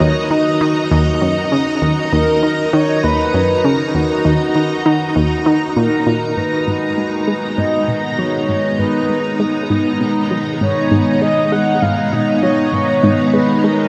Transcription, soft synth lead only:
0, 0, Header, 1, 2, 480
1, 0, Start_track
1, 0, Key_signature, 5, "minor"
1, 0, Tempo, 606061
1, 1204, Time_signature, 4, 2, 24, 8
1, 10993, End_track
2, 0, Start_track
2, 0, Title_t, "Soft synth lead"
2, 0, Program_c, 0, 80
2, 2, Note_on_c, 0, 73, 93
2, 237, Note_off_c, 0, 73, 0
2, 242, Note_on_c, 0, 75, 95
2, 931, Note_off_c, 0, 75, 0
2, 1681, Note_on_c, 0, 70, 104
2, 2131, Note_off_c, 0, 70, 0
2, 2163, Note_on_c, 0, 73, 106
2, 2403, Note_on_c, 0, 71, 113
2, 2414, Note_off_c, 0, 73, 0
2, 2885, Note_on_c, 0, 70, 101
2, 2896, Note_off_c, 0, 71, 0
2, 3127, Note_on_c, 0, 66, 96
2, 3139, Note_off_c, 0, 70, 0
2, 4559, Note_off_c, 0, 66, 0
2, 4564, Note_on_c, 0, 70, 86
2, 5044, Note_on_c, 0, 71, 105
2, 5056, Note_off_c, 0, 70, 0
2, 6004, Note_on_c, 0, 75, 109
2, 6015, Note_off_c, 0, 71, 0
2, 6484, Note_on_c, 0, 73, 95
2, 6496, Note_off_c, 0, 75, 0
2, 6960, Note_off_c, 0, 73, 0
2, 6965, Note_on_c, 0, 71, 86
2, 7413, Note_off_c, 0, 71, 0
2, 8403, Note_on_c, 0, 73, 102
2, 8882, Note_on_c, 0, 75, 105
2, 8893, Note_off_c, 0, 73, 0
2, 9122, Note_on_c, 0, 78, 108
2, 9134, Note_off_c, 0, 75, 0
2, 9361, Note_on_c, 0, 77, 100
2, 9373, Note_off_c, 0, 78, 0
2, 9602, Note_on_c, 0, 75, 93
2, 9614, Note_off_c, 0, 77, 0
2, 9837, Note_off_c, 0, 75, 0
2, 9841, Note_on_c, 0, 73, 101
2, 10560, Note_on_c, 0, 71, 88
2, 10572, Note_off_c, 0, 73, 0
2, 10802, Note_on_c, 0, 70, 85
2, 10814, Note_off_c, 0, 71, 0
2, 10993, Note_off_c, 0, 70, 0
2, 10993, End_track
0, 0, End_of_file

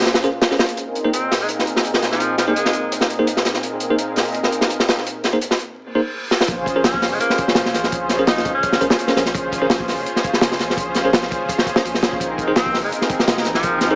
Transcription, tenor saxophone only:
0, 0, Header, 1, 2, 480
1, 0, Start_track
1, 0, Key_signature, -5, "minor"
1, 0, Tempo, 357143
1, 1040, Time_signature, 4, 2, 24, 8
1, 18753, End_track
2, 0, Start_track
2, 0, Title_t, "Tenor saxophone"
2, 0, Program_c, 0, 66
2, 1517, Note_on_c, 0, 60, 79
2, 1809, Note_off_c, 0, 60, 0
2, 1886, Note_on_c, 0, 56, 81
2, 1978, Note_off_c, 0, 56, 0
2, 2840, Note_on_c, 0, 53, 84
2, 3129, Note_off_c, 0, 53, 0
2, 3198, Note_on_c, 0, 53, 79
2, 3299, Note_off_c, 0, 53, 0
2, 3322, Note_on_c, 0, 56, 84
2, 3994, Note_off_c, 0, 56, 0
2, 9194, Note_on_c, 0, 61, 86
2, 9487, Note_off_c, 0, 61, 0
2, 9561, Note_on_c, 0, 56, 90
2, 9656, Note_off_c, 0, 56, 0
2, 9676, Note_on_c, 0, 58, 95
2, 9968, Note_off_c, 0, 58, 0
2, 11114, Note_on_c, 0, 63, 88
2, 11457, Note_off_c, 0, 63, 0
2, 11480, Note_on_c, 0, 61, 90
2, 11838, Note_off_c, 0, 61, 0
2, 16879, Note_on_c, 0, 60, 84
2, 17169, Note_off_c, 0, 60, 0
2, 17249, Note_on_c, 0, 56, 88
2, 17340, Note_off_c, 0, 56, 0
2, 18208, Note_on_c, 0, 53, 89
2, 18493, Note_off_c, 0, 53, 0
2, 18558, Note_on_c, 0, 53, 90
2, 18659, Note_off_c, 0, 53, 0
2, 18687, Note_on_c, 0, 56, 95
2, 18753, Note_off_c, 0, 56, 0
2, 18753, End_track
0, 0, End_of_file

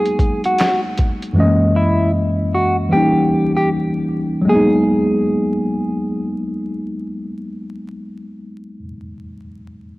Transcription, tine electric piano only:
0, 0, Header, 1, 2, 480
1, 0, Start_track
1, 0, Key_signature, 5, "minor"
1, 0, Tempo, 779221
1, 834, Time_signature, 4, 2, 24, 8
1, 6152, End_track
2, 0, Start_track
2, 0, Title_t, "Tine electric piano"
2, 0, Program_c, 0, 4
2, 0, Control_c, 0, 64, 127
2, 0, Note_on_c, 0, 54, 71
2, 0, Note_on_c, 0, 56, 67
2, 0, Note_on_c, 0, 58, 71
2, 0, Note_on_c, 0, 59, 62
2, 0, Note_on_c, 0, 63, 78
2, 803, Note_off_c, 0, 54, 0
2, 808, Note_off_c, 0, 56, 0
2, 814, Note_off_c, 0, 58, 0
2, 819, Note_off_c, 0, 59, 0
2, 819, Note_on_c, 0, 42, 72
2, 824, Note_off_c, 0, 63, 0
2, 827, Note_on_c, 0, 52, 64
2, 837, Note_on_c, 0, 56, 70
2, 843, Control_c, 0, 64, 0
2, 844, Note_on_c, 0, 57, 51
2, 854, Note_on_c, 0, 61, 69
2, 861, Note_on_c, 0, 75, 78
2, 885, Note_on_c, 0, 58, 66
2, 890, Note_off_c, 0, 57, 0
2, 946, Control_c, 0, 64, 127
2, 1767, Note_off_c, 0, 42, 0
2, 1771, Note_off_c, 0, 52, 0
2, 1776, Note_off_c, 0, 56, 0
2, 1782, Note_on_c, 0, 52, 63
2, 1785, Note_off_c, 0, 61, 0
2, 1789, Note_off_c, 0, 75, 0
2, 1791, Note_on_c, 0, 55, 55
2, 1795, Note_off_c, 0, 58, 0
2, 1803, Control_c, 0, 64, 0
2, 1803, Note_on_c, 0, 58, 55
2, 1814, Note_on_c, 0, 61, 57
2, 1824, Note_on_c, 0, 63, 66
2, 1907, Control_c, 0, 64, 127
2, 2720, Note_on_c, 0, 54, 69
2, 2728, Note_off_c, 0, 52, 0
2, 2733, Note_off_c, 0, 55, 0
2, 2739, Note_off_c, 0, 58, 0
2, 2742, Note_on_c, 0, 56, 69
2, 2745, Note_off_c, 0, 61, 0
2, 2750, Note_off_c, 0, 63, 0
2, 2762, Note_on_c, 0, 58, 67
2, 2763, Control_c, 0, 64, 0
2, 2784, Note_on_c, 0, 59, 68
2, 2806, Note_on_c, 0, 63, 81
2, 2871, Control_c, 0, 64, 127
2, 5406, Note_off_c, 0, 54, 0
2, 5428, Note_off_c, 0, 56, 0
2, 5449, Note_off_c, 0, 58, 0
2, 5470, Note_off_c, 0, 59, 0
2, 5492, Note_off_c, 0, 63, 0
2, 6152, End_track
0, 0, End_of_file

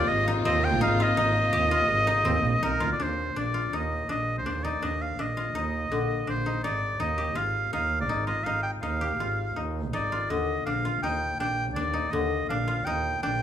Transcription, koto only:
0, 0, Header, 1, 2, 480
1, 0, Start_track
1, 0, Key_signature, -3, "major"
1, 0, Tempo, 359281
1, 1571, Time_signature, 5, 2, 24, 8
1, 3016, Tempo, 365408
1, 17686, End_track
2, 0, Start_track
2, 0, Title_t, "Koto"
2, 0, Program_c, 0, 107
2, 0, Note_on_c, 0, 63, 83
2, 0, Note_on_c, 0, 65, 81
2, 0, Note_on_c, 0, 67, 80
2, 364, Note_off_c, 0, 63, 0
2, 369, Note_on_c, 0, 63, 76
2, 605, Note_on_c, 0, 60, 84
2, 1077, Note_off_c, 0, 63, 0
2, 1082, Note_on_c, 0, 63, 83
2, 1330, Note_off_c, 0, 65, 0
2, 1335, Note_on_c, 0, 65, 78
2, 1560, Note_off_c, 0, 63, 0
2, 1565, Note_on_c, 0, 63, 86
2, 2035, Note_off_c, 0, 67, 0
2, 2040, Note_on_c, 0, 67, 80
2, 2283, Note_off_c, 0, 65, 0
2, 2288, Note_on_c, 0, 65, 77
2, 2762, Note_off_c, 0, 63, 0
2, 2767, Note_on_c, 0, 63, 78
2, 3000, Note_off_c, 0, 60, 0
2, 3005, Note_on_c, 0, 60, 83
2, 3496, Note_off_c, 0, 63, 0
2, 3501, Note_on_c, 0, 63, 80
2, 3728, Note_off_c, 0, 65, 0
2, 3733, Note_on_c, 0, 65, 75
2, 3987, Note_on_c, 0, 62, 67
2, 4065, Note_off_c, 0, 63, 0
2, 4464, Note_off_c, 0, 62, 0
2, 4469, Note_on_c, 0, 62, 62
2, 4697, Note_off_c, 0, 65, 0
2, 4702, Note_on_c, 0, 65, 60
2, 4736, Note_off_c, 0, 67, 0
2, 4953, Note_on_c, 0, 63, 62
2, 5032, Note_off_c, 0, 62, 0
2, 5425, Note_on_c, 0, 62, 64
2, 5504, Note_off_c, 0, 63, 0
2, 5904, Note_off_c, 0, 62, 0
2, 5909, Note_on_c, 0, 62, 65
2, 6153, Note_on_c, 0, 63, 59
2, 6232, Note_off_c, 0, 62, 0
2, 6388, Note_on_c, 0, 62, 67
2, 6420, Note_off_c, 0, 60, 0
2, 6467, Note_off_c, 0, 63, 0
2, 6863, Note_off_c, 0, 62, 0
2, 6868, Note_on_c, 0, 62, 63
2, 7100, Note_off_c, 0, 65, 0
2, 7105, Note_on_c, 0, 65, 60
2, 7342, Note_on_c, 0, 63, 67
2, 7420, Note_off_c, 0, 62, 0
2, 7822, Note_on_c, 0, 50, 69
2, 7901, Note_off_c, 0, 63, 0
2, 8291, Note_on_c, 0, 62, 65
2, 8538, Note_on_c, 0, 63, 61
2, 8616, Note_off_c, 0, 62, 0
2, 8770, Note_off_c, 0, 63, 0
2, 8775, Note_on_c, 0, 63, 72
2, 8839, Note_off_c, 0, 50, 0
2, 9238, Note_off_c, 0, 63, 0
2, 9243, Note_on_c, 0, 63, 71
2, 9480, Note_on_c, 0, 67, 64
2, 9705, Note_off_c, 0, 65, 0
2, 9710, Note_on_c, 0, 65, 67
2, 10199, Note_off_c, 0, 63, 0
2, 10204, Note_on_c, 0, 63, 71
2, 10677, Note_off_c, 0, 63, 0
2, 10682, Note_on_c, 0, 63, 66
2, 10910, Note_off_c, 0, 65, 0
2, 10915, Note_on_c, 0, 65, 60
2, 11162, Note_off_c, 0, 63, 0
2, 11167, Note_on_c, 0, 63, 68
2, 11642, Note_off_c, 0, 63, 0
2, 11647, Note_on_c, 0, 63, 66
2, 11882, Note_off_c, 0, 67, 0
2, 11887, Note_on_c, 0, 67, 63
2, 12134, Note_off_c, 0, 65, 0
2, 12139, Note_on_c, 0, 65, 65
2, 12607, Note_off_c, 0, 63, 0
2, 12612, Note_on_c, 0, 63, 62
2, 13093, Note_off_c, 0, 63, 0
2, 13098, Note_on_c, 0, 63, 65
2, 13341, Note_off_c, 0, 65, 0
2, 13346, Note_on_c, 0, 65, 59
2, 13584, Note_on_c, 0, 50, 69
2, 13663, Note_off_c, 0, 63, 0
2, 14062, Note_on_c, 0, 62, 62
2, 14298, Note_off_c, 0, 65, 0
2, 14304, Note_on_c, 0, 65, 60
2, 14546, Note_on_c, 0, 63, 62
2, 14567, Note_off_c, 0, 67, 0
2, 14625, Note_off_c, 0, 62, 0
2, 15029, Note_on_c, 0, 62, 67
2, 15107, Note_off_c, 0, 63, 0
2, 15496, Note_off_c, 0, 62, 0
2, 15501, Note_on_c, 0, 62, 67
2, 15729, Note_on_c, 0, 63, 61
2, 15808, Note_off_c, 0, 62, 0
2, 15969, Note_off_c, 0, 50, 0
2, 15984, Note_on_c, 0, 50, 71
2, 16063, Note_off_c, 0, 63, 0
2, 16475, Note_on_c, 0, 62, 66
2, 16696, Note_off_c, 0, 65, 0
2, 16702, Note_on_c, 0, 65, 63
2, 16953, Note_on_c, 0, 63, 67
2, 17031, Note_off_c, 0, 62, 0
2, 17430, Note_on_c, 0, 62, 71
2, 17509, Note_off_c, 0, 63, 0
2, 17686, Note_off_c, 0, 50, 0
2, 17686, Note_off_c, 0, 62, 0
2, 17686, Note_off_c, 0, 65, 0
2, 17686, End_track
0, 0, End_of_file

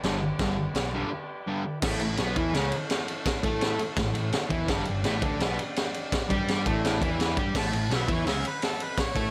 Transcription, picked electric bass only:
0, 0, Header, 1, 3, 480
1, 0, Start_track
1, 0, Tempo, 357569
1, 534, Time_signature, 4, 2, 24, 8
1, 12492, End_track
2, 0, Start_track
2, 0, Title_t, "Picked electric bass"
2, 0, Program_c, 0, 34
2, 41, Note_on_c, 0, 31, 85
2, 421, Note_off_c, 0, 31, 0
2, 518, Note_on_c, 0, 31, 96
2, 899, Note_off_c, 0, 31, 0
2, 993, Note_on_c, 0, 35, 86
2, 1376, Note_off_c, 0, 35, 0
2, 2444, Note_on_c, 0, 33, 99
2, 2673, Note_off_c, 0, 33, 0
2, 2683, Note_on_c, 0, 33, 80
2, 2912, Note_off_c, 0, 33, 0
2, 2924, Note_on_c, 0, 35, 93
2, 3152, Note_off_c, 0, 35, 0
2, 3166, Note_on_c, 0, 40, 99
2, 3393, Note_off_c, 0, 40, 0
2, 3402, Note_on_c, 0, 37, 103
2, 3631, Note_off_c, 0, 37, 0
2, 4603, Note_on_c, 0, 45, 100
2, 5054, Note_off_c, 0, 45, 0
2, 5320, Note_on_c, 0, 33, 91
2, 5549, Note_off_c, 0, 33, 0
2, 5578, Note_on_c, 0, 33, 82
2, 5798, Note_off_c, 0, 33, 0
2, 6048, Note_on_c, 0, 40, 101
2, 6273, Note_off_c, 0, 40, 0
2, 6286, Note_on_c, 0, 31, 102
2, 6512, Note_off_c, 0, 31, 0
2, 6524, Note_on_c, 0, 31, 81
2, 6743, Note_off_c, 0, 31, 0
2, 6751, Note_on_c, 0, 33, 94
2, 6984, Note_off_c, 0, 33, 0
2, 7002, Note_on_c, 0, 38, 97
2, 7230, Note_off_c, 0, 38, 0
2, 7239, Note_on_c, 0, 35, 103
2, 7468, Note_off_c, 0, 35, 0
2, 8458, Note_on_c, 0, 43, 93
2, 8902, Note_off_c, 0, 43, 0
2, 8939, Note_on_c, 0, 33, 96
2, 9383, Note_off_c, 0, 33, 0
2, 9411, Note_on_c, 0, 40, 97
2, 9859, Note_off_c, 0, 40, 0
2, 9891, Note_on_c, 0, 43, 97
2, 10115, Note_off_c, 0, 43, 0
2, 10126, Note_on_c, 0, 33, 96
2, 10353, Note_off_c, 0, 33, 0
2, 10368, Note_on_c, 0, 33, 84
2, 10594, Note_off_c, 0, 33, 0
2, 10602, Note_on_c, 0, 35, 89
2, 10831, Note_off_c, 0, 35, 0
2, 10844, Note_on_c, 0, 40, 98
2, 11072, Note_off_c, 0, 40, 0
2, 11084, Note_on_c, 0, 37, 98
2, 11313, Note_off_c, 0, 37, 0
2, 12291, Note_on_c, 0, 45, 93
2, 12492, Note_off_c, 0, 45, 0
2, 12492, End_track
3, 0, Start_track
3, 0, Title_t, "Muted picked electric bass strokes"
3, 5086, Note_on_c, 9, 29, 42
3, 5220, Note_off_c, 9, 29, 0
3, 5822, Note_on_c, 9, 29, 42
3, 5957, Note_off_c, 9, 29, 0
3, 12492, End_track
0, 0, End_of_file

